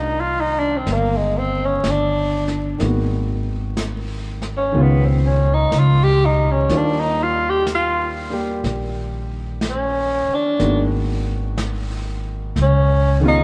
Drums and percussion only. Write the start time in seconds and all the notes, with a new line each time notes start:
0.87 brush sweep, snare
1.84 brush sweep, snare, hi-hat pedal
2.48 snare
2.80 brush sweep, snare
3.77 brush sweep, snare, hi-hat pedal
4.42 snare
4.75 brush sweep
5.72 brush sweep, snare, hi-hat pedal
6.69 brush sweep, snare
7.67 brush sweep, snare, hi-hat pedal
8.64 brush sweep, snare
9.61 brush sweep, snare, hi-hat pedal
10.60 brush sweep, snare
11.58 brush sweep, snare, hi-hat pedal
12.56 brush sweep, snare